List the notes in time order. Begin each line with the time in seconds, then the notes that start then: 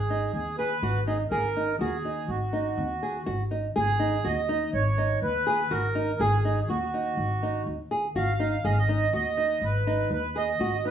Already playing: G#1 G#4
0.10 D#4
0.33 D#2 G#4
0.58 G#4 B4
0.82 G#1 F#4
1.07 D#4 G#4
1.30 G#1 G#4 A#4
1.56 D#4
1.79 D#2 F#4 G#4
2.05 D#4
2.28 G#1 F#4
2.53 D#4
2.78 D#2
3.03 G#4
3.26 G#1 F#4
3.51 D#4
3.76 G#1 G#4
4.00 D#4
4.24 D#2 F#4 D#5
4.49 D#4
4.73 G#1 C#5
4.98 D#4
5.22 D#2 B4
5.47 G#4
5.71 G#1 F#4 A#4
5.95 D#4
6.19 G#1 G#4
6.45 D#4
6.62 G#4
6.68 D#2 F#4
6.94 D#4
7.17 G#1
7.43 D#4
7.66 D#2
7.91 G#4
8.15 G#1 F#4 F5
8.40 D#4
8.64 G#1 G#4 D#5
8.71 F5
8.79 D#5
8.89 D#4
9.13 D#2 F#4 D#5
9.37 D#4
9.61 G#1 B4
9.87 D#4
10.10 D#2 B4
10.36 G#4 D#5
10.60 G#1 F#4
10.85 D#4 B4